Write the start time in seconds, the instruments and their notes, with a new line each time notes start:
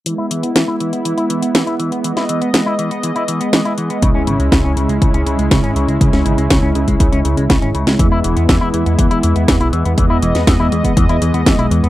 0.06 clean electric guitar E3, analog synth pad G#3 B3 E4, closed hi-hat
0.18 clean electric guitar E4
0.31 clean electric guitar E3, closed hi-hat
0.43 clean electric guitar B3, closed hi-hat
0.56 clean electric guitar E3, snare, closed hi-hat
0.68 clean electric guitar E4
0.80 clean electric guitar E3, closed hi-hat
0.93 clean electric guitar B3, closed hi-hat
1.05 clean electric guitar E3, closed hi-hat
1.18 clean electric guitar E4, closed hi-hat
1.30 clean electric guitar E3, closed hi-hat
1.42 clean electric guitar B3, closed hi-hat
1.55 clean electric guitar E3, snare, closed hi-hat
1.67 clean electric guitar E4, closed hi-hat
1.79 clean electric guitar E3, closed hi-hat
1.92 clean electric guitar B3, closed hi-hat
2.04 clean electric guitar E3, analog synth pad D#5, closed hi-hat
2.17 clean electric guitar E4, snare, closed hi-hat
2.29 clean electric guitar E3, closed hi-hat
2.41 clean electric guitar B3, closed hi-hat
2.54 clean electric guitar E3, snare, closed hi-hat
2.66 clean electric guitar E4
2.79 clean electric guitar E3, closed hi-hat
2.91 clean electric guitar B3, closed hi-hat
3.03 clean electric guitar E3, closed hi-hat
3.16 clean electric guitar E4, closed hi-hat
3.28 clean electric guitar E3, closed hi-hat
3.41 clean electric guitar B3, closed hi-hat
3.53 clean electric guitar E3, snare, closed hi-hat
3.65 clean electric guitar E4, closed hi-hat
3.78 clean electric guitar E3, closed hi-hat
3.90 clean electric guitar B3, closed hi-hat
4.02 analog synth bass C#2, clean electric guitar C#3, analog synth pad C#4 E4, kick, closed hi-hat
4.15 analog synth bass C#2, clean electric guitar C#4
4.27 analog synth bass G#1, clean electric guitar C#3, closed hi-hat
4.39 analog synth bass C#2, clean electric guitar G#3, closed hi-hat
4.52 analog synth bass C#2, clean electric guitar C#3, kick, snare, closed hi-hat
4.64 analog synth bass C#2, clean electric guitar C#4
4.76 analog synth bass C#2, clean electric guitar C#3, closed hi-hat
4.89 analog synth bass C#2, clean electric guitar G#3, closed hi-hat
5.02 analog synth bass C#2, clean electric guitar C#3, kick, closed hi-hat
5.14 analog synth bass C#2, clean electric guitar C#4, closed hi-hat
5.26 analog synth bass C#2, clean electric guitar C#3, closed hi-hat
5.39 analog synth bass C#2, clean electric guitar G#3, closed hi-hat
5.51 analog synth bass C#2, clean electric guitar C#3, kick, snare, closed hi-hat
5.63 analog synth bass G#1, clean electric guitar C#4, closed hi-hat
5.76 analog synth bass C#2, clean electric guitar C#3, closed hi-hat
5.88 analog synth bass C#2, clean electric guitar G#3, closed hi-hat
6.01 analog synth bass C#2, clean electric guitar C#3, kick, closed hi-hat
6.13 analog synth bass C#2, clean electric guitar C#4, snare, closed hi-hat
6.26 analog synth bass G#1, clean electric guitar C#3, closed hi-hat
6.38 analog synth bass C#2, clean electric guitar G#3, closed hi-hat
6.50 analog synth bass C#2, clean electric guitar C#3, kick, snare, closed hi-hat
6.63 analog synth bass C#2, clean electric guitar C#4
6.75 analog synth bass C#2, clean electric guitar C#3, closed hi-hat
6.88 analog synth bass C#2, clean electric guitar G#3, kick, closed hi-hat
7.00 analog synth bass C#2, clean electric guitar C#3, kick, closed hi-hat
7.13 analog synth bass C#2, clean electric guitar C#4, closed hi-hat
7.25 analog synth bass C#2, clean electric guitar C#3, closed hi-hat
7.37 analog synth bass C#2, clean electric guitar G#3, closed hi-hat
7.50 analog synth bass C#2, clean electric guitar C#3, kick, snare, closed hi-hat
7.62 analog synth bass G#1, clean electric guitar C#4, closed hi-hat
7.75 analog synth bass C#2, clean electric guitar C#3, closed hi-hat
7.87 analog synth bass C#2, clean electric guitar G#3, snare, closed hi-hat
7.99 analog synth bass E2, clean electric guitar E3, analog synth pad G#3 B3 E4, kick, closed hi-hat
8.12 analog synth bass E2, clean electric guitar E4
8.24 analog synth bass E1, clean electric guitar E3, closed hi-hat
8.37 analog synth bass E2, clean electric guitar B3, closed hi-hat
8.49 analog synth bass E2, clean electric guitar E3, kick, snare, closed hi-hat
8.61 analog synth bass E2, clean electric guitar E4
8.74 analog synth bass E2, clean electric guitar E3, closed hi-hat
8.86 analog synth bass E2, clean electric guitar B3, closed hi-hat
8.98 analog synth bass E2, clean electric guitar E3, kick, closed hi-hat
9.11 analog synth bass E2, clean electric guitar E4, closed hi-hat
9.23 analog synth bass E2, clean electric guitar E3, closed hi-hat
9.36 analog synth bass E2, clean electric guitar B3, closed hi-hat
9.48 analog synth bass E2, clean electric guitar E3, kick, snare, closed hi-hat
9.61 analog synth bass B1, clean electric guitar E4, closed hi-hat
9.73 analog synth bass E2, clean electric guitar E3, closed hi-hat
9.85 analog synth bass E2, clean electric guitar B3, closed hi-hat
9.98 analog synth bass E2, clean electric guitar E3, analog synth pad D#5, kick, closed hi-hat
10.10 analog synth bass E2, clean electric guitar E4
10.22 analog synth bass E1, clean electric guitar E3, closed hi-hat
10.35 analog synth bass E2, clean electric guitar B3, snare, closed hi-hat
10.47 analog synth bass E2, clean electric guitar E3, kick, snare, closed hi-hat
10.60 analog synth bass E2, clean electric guitar E4
10.72 analog synth bass E2, clean electric guitar E3, closed hi-hat
10.84 analog synth bass E2, clean electric guitar B3, kick, closed hi-hat
10.97 analog synth bass E2, clean electric guitar E3, kick, closed hi-hat
11.09 analog synth bass E2, clean electric guitar E4, closed hi-hat
11.22 analog synth bass E2, clean electric guitar E3, closed hi-hat
11.34 analog synth bass E2, clean electric guitar B3, closed hi-hat
11.46 analog synth bass E2, clean electric guitar E3, kick, snare, closed hi-hat
11.59 analog synth bass B1, clean electric guitar E4, closed hi-hat
11.71 analog synth bass E2, clean electric guitar E3, closed hi-hat
11.83 analog synth bass E2, clean electric guitar B3, closed hi-hat